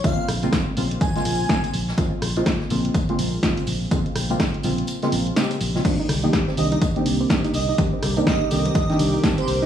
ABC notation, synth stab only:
X:1
M:4/4
L:1/16
Q:"Swing 16ths" 1/4=124
K:Bbdor
V:1 name="Synth stab"
[D,A,B,CF]3 [D,A,B,CF]3 [D,A,B,CF]3 [D,A,B,CF]3 [D,A,B,CF]4 | [D,A,B,CF]3 [D,A,B,CF]3 [D,A,B,CF]3 [D,A,B,CF]3 [D,A,B,CF]4 | [D,A,B,CF]3 [D,A,B,CF]3 [D,A,B,CF]3 [D,A,B,CF]3 [D,A,B,CG]3 [D,A,B,CF] | [E,B,C=DG]3 [E,B,CDG]3 [E,B,CDG]3 [E,B,CDG]3 [E,B,CDG]4 |
[E,B,C=DG]3 [E,B,CDG]3 [=D,E,B,CG]3 [E,B,CDG]3 [E,B,CDG]4 |]